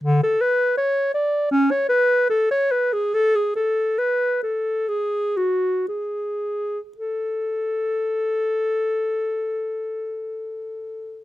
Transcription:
0.04 D3
0.23 A4
0.41 B4
0.77 C#5
1.14 D5
1.51 C#4
1.71 C#5
1.89 B4
2.30 A4
2.51 C#5
2.71 B4
2.93 G#4
3.14 A4
3.35 G#4
3.55 A4
3.98 B4
4.43 A4
4.88 G#4
5.37 F#4
5.88 G#4
6.97 A4

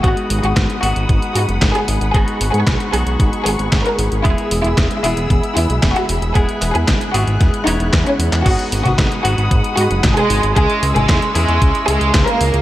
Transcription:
0.04 G#1 G#3 B3 D#4 F#4 G#4 F#5 B5 D#6, kick, closed hi-hat
0.17 closed hi-hat
0.30 G#1, open hi-hat
0.43 G#1 F#4, closed hi-hat
0.57 G#1, kick, snare, clap, closed hi-hat
0.70 closed hi-hat
0.82 G#1 G#3 B3 D#4 F#4, open hi-hat
0.96 G#1, closed hi-hat
1.09 G#1, kick, closed hi-hat
1.22 closed hi-hat
1.35 G#2 F#4, open hi-hat
1.49 F#1, closed hi-hat
1.62 G#1, kick, snare, clap, closed hi-hat
1.75 G#4, closed hi-hat
1.88 G#1, open hi-hat
2.01 G#1, closed hi-hat
2.14 G#1 G#3 B3 D#4 F#4 G#4 C#6, kick, closed hi-hat
2.28 closed hi-hat
2.41 G#1, open hi-hat
2.54 G#2 G#4, closed hi-hat
2.67 B1, kick, snare, clap, closed hi-hat
2.80 closed hi-hat
2.93 B1 G#3 B3 D#4 F#4 G#4, open hi-hat
3.07 B1, closed hi-hat
3.20 G#1, kick, closed hi-hat
3.33 closed hi-hat
3.46 G#1 G#4, open hi-hat
3.59 G#1, closed hi-hat
3.72 G#1, kick, snare, clap, closed hi-hat
3.85 A#4, closed hi-hat
3.98 G#1, open hi-hat
4.12 G#1, closed hi-hat
4.24 E1 G#3 B3 E4 G#4 E5 B5 E6, kick, closed hi-hat
4.38 closed hi-hat
4.51 E1, open hi-hat
4.64 E1 E4, closed hi-hat
4.78 E1, kick, snare, clap, closed hi-hat
4.91 closed hi-hat
5.03 E1 G#3 B3 E4 G#4, open hi-hat
5.17 E1, closed hi-hat
5.30 E1, kick, closed hi-hat
5.43 closed hi-hat
5.56 E2 E4, open hi-hat
5.70 B1, closed hi-hat
5.83 E1, kick, snare, clap, closed hi-hat
5.96 F#4, closed hi-hat
6.09 E1, open hi-hat
6.22 E1, closed hi-hat
6.35 E1 G#3 B3 E4 G#4 F#6, kick, closed hi-hat
6.49 closed hi-hat
6.62 E1, clap, open hi-hat
6.75 E2 G#4, closed hi-hat
6.88 G#1, kick, snare, clap, closed hi-hat
7.01 closed hi-hat
7.14 G#1 G#3 B3 E4 F#4 G#4, open hi-hat
7.27 G#1, closed hi-hat
7.41 E1, kick, snare, closed hi-hat
7.54 closed hi-hat
7.66 E1 G#3 B3 D#4 E4 C#5, open hi-hat
7.80 E1, closed hi-hat
7.93 E2, kick, snare, clap, closed hi-hat
8.06 C#4, closed hi-hat
8.19 E2, open hi-hat
8.33 E2, clap, closed hi-hat
8.45 G#1 G#3 B3 D#4 F#4 G#4 F#5 B5 D#6, kick, closed hi-hat, crash
8.59 closed hi-hat
8.72 G#1, open hi-hat
8.85 G#1 F#4, closed hi-hat, high conga
8.98 G#1, kick, snare, clap, closed hi-hat
9.12 closed hi-hat
9.24 G#1 G#3 B3 D#4 F#4, open hi-hat
9.38 G#1, closed hi-hat
9.51 G#1, kick, closed hi-hat
9.64 closed hi-hat
9.77 G#2 F#4, open hi-hat
9.90 F#1, closed hi-hat
10.04 G#1, kick, snare, clap, closed hi-hat, high conga
10.17 G#3 G#4, closed hi-hat
10.30 G#1, open hi-hat
10.43 G#1, closed hi-hat
10.56 C#2 G#3 C#4 E4 G#4 E5 C#6 E6, kick, closed hi-hat
10.70 closed hi-hat
10.83 C#2, open hi-hat
10.96 G#1 G#3 G#4, closed hi-hat, high conga
11.09 E2, kick, snare, clap, closed hi-hat
11.22 closed hi-hat
11.35 E2 G#3 C#4 E4 G#4, open hi-hat
11.48 E2, closed hi-hat
11.62 C#2, kick, closed hi-hat
11.75 closed hi-hat
11.88 C#2 G#3 G#4, open hi-hat
12.01 C#2, closed hi-hat
12.14 C#2, kick, snare, clap, closed hi-hat
12.27 A#3 A#4, closed hi-hat
12.41 C#2, open hi-hat
12.54 C#2, closed hi-hat

